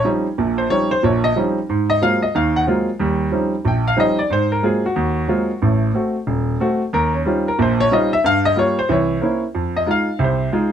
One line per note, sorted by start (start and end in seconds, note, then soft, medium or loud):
0.04 0.26 F3 soft
0.04 0.26 G3 soft
0.04 0.26 C4 soft
0.04 0.26 C#4 soft
0.04 0.26 D#4 medium
0.38 0.66 A#1 medium
0.38 0.66 A#2 medium
0.58 0.69 C5 medium
0.70 0.91 F3 soft
0.70 0.92 G3 soft
0.70 0.92 C4 soft
0.70 0.92 C#4 soft
0.70 0.92 D#4 medium
0.70 0.90 C#5 medium
0.91 1.02 C5 medium
1.03 1.31 A#1 medium
1.03 1.31 A#2 medium
1.03 1.23 C#5 medium
1.24 1.35 D#5 medium
1.36 1.57 F3 medium
1.36 1.57 G3 soft
1.36 1.57 C4 soft
1.36 1.57 C#4 soft
1.36 1.58 D#4 medium
1.69 1.97 G#2 medium
1.90 2.01 D#5 medium
2.02 2.23 F#3 soft
2.02 2.23 G#3 soft
2.02 2.23 A#3 soft
2.02 2.23 C4 soft
2.02 2.23 F4 medium
2.02 2.21 F5 medium
2.22 2.34 D#5 medium
2.35 2.62 D#2 medium
2.35 2.62 D#3 medium
2.35 2.54 F5 medium
2.56 2.63 F#5 medium
2.67 2.88 F#3 medium
2.67 2.88 G#3 soft
2.67 2.88 A#3 soft
2.67 2.88 C4 soft
2.67 2.89 F4 medium
3.00 3.27 D#2 medium
3.00 3.28 G3 medium
3.32 3.53 F3 soft
3.32 3.53 G3 soft
3.32 3.54 C4 soft
3.32 3.54 C#4 soft
3.32 3.54 D#4 soft
3.65 3.93 A#1 medium
3.65 3.86 G5 medium
3.88 3.98 F5 medium
3.97 4.18 F3 soft
3.97 4.18 G3 soft
3.97 4.18 C4 medium
3.97 4.19 C#4 soft
3.97 4.19 D#4 medium
3.97 4.18 D#5 medium
4.19 4.30 D5 medium
4.30 4.58 G#2 medium
4.30 4.51 C5 medium
4.52 4.63 A#4 medium
4.63 4.84 F#3 soft
4.63 4.84 G#3 soft
4.63 4.85 A#3 soft
4.63 4.85 C4 soft
4.63 4.85 F4 medium
4.63 4.83 G#4 medium
4.86 5.58 F#4 medium
4.96 5.24 D#2 medium
5.28 5.50 F#3 soft
5.28 5.50 G#3 soft
5.28 5.50 A#3 soft
5.28 5.50 C4 soft
5.28 5.50 F4 medium
5.62 5.89 A1 medium
5.62 5.90 A2 medium
5.94 6.15 A3 soft
5.94 6.16 C4 soft
5.94 6.16 F#4 medium
6.27 6.55 D#1 medium
6.60 6.81 A3 medium
6.60 6.81 C4 soft
6.60 6.82 F#4 medium
6.93 7.21 D#2 medium
6.93 7.13 A#4 medium
7.14 7.24 C#4 medium
7.25 7.46 G3 medium
7.25 7.47 C4 soft
7.25 7.47 C#4 soft
7.25 7.47 D#4 soft
7.25 7.47 F4 soft
7.48 7.58 A#4 medium
7.59 7.86 A#1 medium
7.59 7.86 A#2 medium
7.59 7.79 C5 medium
7.80 7.91 C#5 loud
7.91 8.12 G3 medium
7.91 8.12 C4 soft
7.91 8.12 C#4 medium
7.91 8.12 D#4 medium
7.91 8.13 F4 medium
7.91 8.11 D#5 medium
8.13 8.23 E5 medium
8.24 8.52 G2 medium
8.24 8.44 F5 loud
8.45 8.56 D#5 medium
8.56 8.77 G3 soft
8.56 8.78 A#3 soft
8.56 8.78 F4 medium
8.56 8.77 C#5 medium
8.79 8.89 C5 medium
8.89 9.16 C2 medium
8.89 9.17 E3 medium
8.89 9.39 C#5 medium
9.21 9.42 A#3 medium
9.21 9.43 C4 soft
9.21 9.43 C#4 soft
9.21 9.43 E4 medium
9.55 9.82 F2 medium
9.76 9.87 D#5 medium
9.86 10.08 G#3 soft
9.86 10.08 D#4 soft
9.86 10.08 F4 medium
9.91 10.19 F5 medium
10.19 10.47 C2 medium
10.19 10.47 C3 medium
10.24 10.71 C5 medium
10.52 10.72 G#3 medium
10.52 10.72 D#4 medium
10.52 10.72 F4 medium